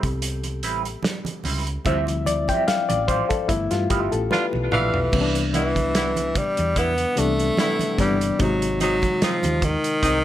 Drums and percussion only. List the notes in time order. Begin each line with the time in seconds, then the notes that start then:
0.03 kick, closed hi-hat
0.22 closed hi-hat
0.43 closed hi-hat, muted conga
0.63 closed hi-hat
0.85 closed hi-hat
1.03 snare, closed hi-hat, high conga
1.25 closed hi-hat, muted conga, high conga
1.44 open hi-hat, low conga
1.67 closed hi-hat
1.85 kick, closed hi-hat, low conga
2.07 closed hi-hat, muted conga
2.26 closed hi-hat, high conga
2.48 kick, closed hi-hat, high conga
2.68 snare, closed hi-hat
2.90 closed hi-hat, muted conga, high conga
3.08 kick, closed hi-hat
3.30 kick, closed hi-hat
3.49 kick, closed hi-hat
3.71 snare, closed hi-hat
3.90 kick, closed hi-hat
4.12 closed hi-hat
4.31 snare, muted conga, high conga
4.53 high conga
4.72 mid tom, low conga
4.94 floor tom
5.12 kick, crash, low conga
5.35 closed hi-hat
5.54 closed hi-hat, high conga
5.76 kick, closed hi-hat, high conga
5.95 snare, closed hi-hat, muted conga
6.16 closed hi-hat, high conga
6.35 kick, closed hi-hat, low conga
6.57 closed hi-hat
6.76 kick, closed hi-hat
6.98 closed hi-hat, muted conga
7.17 closed hi-hat
7.39 closed hi-hat
7.57 snare, closed hi-hat, high conga
7.79 closed hi-hat, high conga
7.98 kick, snare, closed hi-hat, low conga
8.21 closed hi-hat
8.39 kick, closed hi-hat, low conga
8.62 closed hi-hat
8.80 closed hi-hat, high conga
9.02 kick, closed hi-hat, high conga
9.22 snare, closed hi-hat, muted conga
9.43 closed hi-hat, high conga
9.62 kick, closed hi-hat, low conga
9.84 closed hi-hat
10.03 kick, closed hi-hat